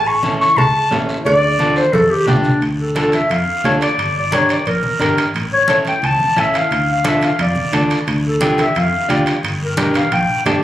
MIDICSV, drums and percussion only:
0, 0, Header, 1, 2, 480
1, 0, Start_track
1, 0, Key_signature, -1, "minor"
1, 0, Tempo, 340716
1, 1775, Time_signature, 4, 2, 24, 8
1, 14983, End_track
2, 0, Start_track
2, 0, Title_t, "Drums"
2, 322, Note_on_c, 9, 63, 89
2, 339, Note_on_c, 9, 73, 78
2, 463, Note_off_c, 9, 63, 0
2, 480, Note_off_c, 9, 73, 0
2, 583, Note_on_c, 9, 73, 80
2, 724, Note_off_c, 9, 73, 0
2, 797, Note_on_c, 9, 63, 38
2, 797, Note_on_c, 9, 64, 92
2, 818, Note_on_c, 9, 56, 92
2, 824, Note_on_c, 9, 74, 72
2, 938, Note_off_c, 9, 63, 0
2, 938, Note_off_c, 9, 64, 0
2, 959, Note_off_c, 9, 56, 0
2, 964, Note_off_c, 9, 74, 0
2, 1275, Note_on_c, 9, 63, 75
2, 1288, Note_on_c, 9, 73, 72
2, 1299, Note_on_c, 9, 66, 76
2, 1416, Note_off_c, 9, 63, 0
2, 1429, Note_off_c, 9, 73, 0
2, 1440, Note_off_c, 9, 66, 0
2, 1535, Note_on_c, 9, 73, 73
2, 1676, Note_off_c, 9, 73, 0
2, 1757, Note_on_c, 9, 63, 37
2, 1776, Note_on_c, 9, 74, 77
2, 1781, Note_on_c, 9, 56, 111
2, 1898, Note_off_c, 9, 63, 0
2, 1916, Note_off_c, 9, 74, 0
2, 1922, Note_off_c, 9, 56, 0
2, 2240, Note_on_c, 9, 63, 93
2, 2248, Note_on_c, 9, 73, 80
2, 2381, Note_off_c, 9, 63, 0
2, 2389, Note_off_c, 9, 73, 0
2, 2480, Note_on_c, 9, 73, 78
2, 2621, Note_off_c, 9, 73, 0
2, 2723, Note_on_c, 9, 63, 98
2, 2724, Note_on_c, 9, 74, 78
2, 2742, Note_on_c, 9, 56, 87
2, 2864, Note_off_c, 9, 63, 0
2, 2865, Note_off_c, 9, 74, 0
2, 2883, Note_off_c, 9, 56, 0
2, 3204, Note_on_c, 9, 64, 106
2, 3207, Note_on_c, 9, 73, 77
2, 3218, Note_on_c, 9, 66, 73
2, 3345, Note_off_c, 9, 64, 0
2, 3348, Note_off_c, 9, 73, 0
2, 3359, Note_off_c, 9, 66, 0
2, 3433, Note_on_c, 9, 73, 72
2, 3449, Note_on_c, 9, 64, 87
2, 3574, Note_off_c, 9, 73, 0
2, 3590, Note_off_c, 9, 64, 0
2, 3685, Note_on_c, 9, 74, 64
2, 3694, Note_on_c, 9, 65, 57
2, 3826, Note_off_c, 9, 74, 0
2, 3835, Note_off_c, 9, 65, 0
2, 3925, Note_on_c, 9, 63, 27
2, 4066, Note_off_c, 9, 63, 0
2, 4156, Note_on_c, 9, 73, 69
2, 4167, Note_on_c, 9, 63, 81
2, 4175, Note_on_c, 9, 65, 62
2, 4297, Note_off_c, 9, 73, 0
2, 4308, Note_off_c, 9, 63, 0
2, 4315, Note_off_c, 9, 65, 0
2, 4399, Note_on_c, 9, 73, 62
2, 4412, Note_on_c, 9, 65, 59
2, 4416, Note_on_c, 9, 63, 57
2, 4539, Note_off_c, 9, 73, 0
2, 4553, Note_off_c, 9, 65, 0
2, 4556, Note_off_c, 9, 63, 0
2, 4643, Note_on_c, 9, 74, 68
2, 4656, Note_on_c, 9, 63, 28
2, 4663, Note_on_c, 9, 65, 62
2, 4784, Note_off_c, 9, 74, 0
2, 4797, Note_off_c, 9, 63, 0
2, 4803, Note_off_c, 9, 65, 0
2, 5130, Note_on_c, 9, 63, 65
2, 5130, Note_on_c, 9, 73, 67
2, 5145, Note_on_c, 9, 65, 55
2, 5145, Note_on_c, 9, 66, 65
2, 5271, Note_off_c, 9, 63, 0
2, 5271, Note_off_c, 9, 73, 0
2, 5286, Note_off_c, 9, 65, 0
2, 5286, Note_off_c, 9, 66, 0
2, 5367, Note_on_c, 9, 73, 66
2, 5386, Note_on_c, 9, 65, 67
2, 5508, Note_off_c, 9, 73, 0
2, 5527, Note_off_c, 9, 65, 0
2, 5616, Note_on_c, 9, 74, 61
2, 5623, Note_on_c, 9, 65, 63
2, 5757, Note_off_c, 9, 74, 0
2, 5763, Note_off_c, 9, 65, 0
2, 5851, Note_on_c, 9, 63, 30
2, 5992, Note_off_c, 9, 63, 0
2, 6088, Note_on_c, 9, 63, 89
2, 6090, Note_on_c, 9, 73, 70
2, 6104, Note_on_c, 9, 65, 65
2, 6229, Note_off_c, 9, 63, 0
2, 6231, Note_off_c, 9, 73, 0
2, 6245, Note_off_c, 9, 65, 0
2, 6326, Note_on_c, 9, 73, 71
2, 6343, Note_on_c, 9, 65, 58
2, 6467, Note_off_c, 9, 73, 0
2, 6484, Note_off_c, 9, 65, 0
2, 6560, Note_on_c, 9, 74, 64
2, 6568, Note_on_c, 9, 63, 27
2, 6579, Note_on_c, 9, 65, 61
2, 6701, Note_off_c, 9, 74, 0
2, 6709, Note_off_c, 9, 63, 0
2, 6720, Note_off_c, 9, 65, 0
2, 6805, Note_on_c, 9, 63, 69
2, 6946, Note_off_c, 9, 63, 0
2, 7035, Note_on_c, 9, 63, 76
2, 7055, Note_on_c, 9, 73, 66
2, 7070, Note_on_c, 9, 65, 61
2, 7176, Note_off_c, 9, 63, 0
2, 7196, Note_off_c, 9, 73, 0
2, 7211, Note_off_c, 9, 65, 0
2, 7292, Note_on_c, 9, 73, 61
2, 7302, Note_on_c, 9, 65, 68
2, 7433, Note_off_c, 9, 73, 0
2, 7443, Note_off_c, 9, 65, 0
2, 7528, Note_on_c, 9, 74, 67
2, 7547, Note_on_c, 9, 65, 59
2, 7669, Note_off_c, 9, 74, 0
2, 7688, Note_off_c, 9, 65, 0
2, 7765, Note_on_c, 9, 63, 30
2, 7905, Note_off_c, 9, 63, 0
2, 7997, Note_on_c, 9, 73, 67
2, 7998, Note_on_c, 9, 63, 84
2, 8031, Note_on_c, 9, 65, 68
2, 8137, Note_off_c, 9, 73, 0
2, 8139, Note_off_c, 9, 63, 0
2, 8172, Note_off_c, 9, 65, 0
2, 8237, Note_on_c, 9, 63, 58
2, 8248, Note_on_c, 9, 73, 66
2, 8275, Note_on_c, 9, 65, 54
2, 8378, Note_off_c, 9, 63, 0
2, 8389, Note_off_c, 9, 73, 0
2, 8416, Note_off_c, 9, 65, 0
2, 8483, Note_on_c, 9, 74, 68
2, 8484, Note_on_c, 9, 63, 32
2, 8504, Note_on_c, 9, 65, 63
2, 8624, Note_off_c, 9, 74, 0
2, 8625, Note_off_c, 9, 63, 0
2, 8645, Note_off_c, 9, 65, 0
2, 8725, Note_on_c, 9, 63, 69
2, 8866, Note_off_c, 9, 63, 0
2, 8965, Note_on_c, 9, 63, 71
2, 8966, Note_on_c, 9, 73, 67
2, 8988, Note_on_c, 9, 65, 63
2, 9106, Note_off_c, 9, 63, 0
2, 9107, Note_off_c, 9, 73, 0
2, 9129, Note_off_c, 9, 65, 0
2, 9213, Note_on_c, 9, 73, 68
2, 9230, Note_on_c, 9, 65, 66
2, 9353, Note_off_c, 9, 73, 0
2, 9371, Note_off_c, 9, 65, 0
2, 9450, Note_on_c, 9, 74, 69
2, 9468, Note_on_c, 9, 65, 61
2, 9591, Note_off_c, 9, 74, 0
2, 9609, Note_off_c, 9, 65, 0
2, 9686, Note_on_c, 9, 63, 29
2, 9827, Note_off_c, 9, 63, 0
2, 9925, Note_on_c, 9, 63, 92
2, 9932, Note_on_c, 9, 73, 69
2, 9938, Note_on_c, 9, 65, 61
2, 10066, Note_off_c, 9, 63, 0
2, 10073, Note_off_c, 9, 73, 0
2, 10079, Note_off_c, 9, 65, 0
2, 10163, Note_on_c, 9, 63, 57
2, 10174, Note_on_c, 9, 73, 71
2, 10180, Note_on_c, 9, 65, 57
2, 10303, Note_off_c, 9, 63, 0
2, 10315, Note_off_c, 9, 73, 0
2, 10321, Note_off_c, 9, 65, 0
2, 10407, Note_on_c, 9, 63, 32
2, 10413, Note_on_c, 9, 74, 70
2, 10414, Note_on_c, 9, 65, 65
2, 10548, Note_off_c, 9, 63, 0
2, 10554, Note_off_c, 9, 74, 0
2, 10555, Note_off_c, 9, 65, 0
2, 10644, Note_on_c, 9, 63, 69
2, 10784, Note_off_c, 9, 63, 0
2, 10889, Note_on_c, 9, 63, 73
2, 10893, Note_on_c, 9, 65, 63
2, 10893, Note_on_c, 9, 73, 62
2, 11030, Note_off_c, 9, 63, 0
2, 11034, Note_off_c, 9, 65, 0
2, 11034, Note_off_c, 9, 73, 0
2, 11134, Note_on_c, 9, 73, 67
2, 11143, Note_on_c, 9, 65, 61
2, 11275, Note_off_c, 9, 73, 0
2, 11284, Note_off_c, 9, 65, 0
2, 11370, Note_on_c, 9, 74, 66
2, 11380, Note_on_c, 9, 65, 61
2, 11511, Note_off_c, 9, 74, 0
2, 11521, Note_off_c, 9, 65, 0
2, 11610, Note_on_c, 9, 63, 29
2, 11751, Note_off_c, 9, 63, 0
2, 11843, Note_on_c, 9, 63, 86
2, 11855, Note_on_c, 9, 73, 69
2, 11857, Note_on_c, 9, 65, 60
2, 11984, Note_off_c, 9, 63, 0
2, 11996, Note_off_c, 9, 73, 0
2, 11998, Note_off_c, 9, 65, 0
2, 12086, Note_on_c, 9, 73, 72
2, 12090, Note_on_c, 9, 63, 61
2, 12103, Note_on_c, 9, 65, 61
2, 12227, Note_off_c, 9, 73, 0
2, 12230, Note_off_c, 9, 63, 0
2, 12244, Note_off_c, 9, 65, 0
2, 12327, Note_on_c, 9, 74, 58
2, 12335, Note_on_c, 9, 63, 31
2, 12344, Note_on_c, 9, 65, 56
2, 12468, Note_off_c, 9, 74, 0
2, 12476, Note_off_c, 9, 63, 0
2, 12485, Note_off_c, 9, 65, 0
2, 12806, Note_on_c, 9, 73, 65
2, 12814, Note_on_c, 9, 63, 67
2, 12822, Note_on_c, 9, 65, 63
2, 12947, Note_off_c, 9, 73, 0
2, 12955, Note_off_c, 9, 63, 0
2, 12963, Note_off_c, 9, 65, 0
2, 13047, Note_on_c, 9, 73, 66
2, 13060, Note_on_c, 9, 65, 66
2, 13188, Note_off_c, 9, 73, 0
2, 13201, Note_off_c, 9, 65, 0
2, 13288, Note_on_c, 9, 74, 67
2, 13307, Note_on_c, 9, 65, 63
2, 13429, Note_off_c, 9, 74, 0
2, 13448, Note_off_c, 9, 65, 0
2, 13542, Note_on_c, 9, 63, 30
2, 13683, Note_off_c, 9, 63, 0
2, 13767, Note_on_c, 9, 63, 90
2, 13770, Note_on_c, 9, 73, 67
2, 13775, Note_on_c, 9, 65, 60
2, 13908, Note_off_c, 9, 63, 0
2, 13910, Note_off_c, 9, 73, 0
2, 13916, Note_off_c, 9, 65, 0
2, 14007, Note_on_c, 9, 73, 69
2, 14019, Note_on_c, 9, 63, 60
2, 14024, Note_on_c, 9, 65, 61
2, 14148, Note_off_c, 9, 73, 0
2, 14159, Note_off_c, 9, 63, 0
2, 14165, Note_off_c, 9, 65, 0
2, 14253, Note_on_c, 9, 74, 67
2, 14256, Note_on_c, 9, 65, 62
2, 14260, Note_on_c, 9, 63, 31
2, 14394, Note_off_c, 9, 74, 0
2, 14397, Note_off_c, 9, 65, 0
2, 14401, Note_off_c, 9, 63, 0
2, 14733, Note_on_c, 9, 63, 67
2, 14741, Note_on_c, 9, 65, 68
2, 14741, Note_on_c, 9, 66, 61
2, 14742, Note_on_c, 9, 73, 65
2, 14873, Note_off_c, 9, 63, 0
2, 14882, Note_off_c, 9, 65, 0
2, 14882, Note_off_c, 9, 66, 0
2, 14883, Note_off_c, 9, 73, 0
2, 14983, End_track
0, 0, End_of_file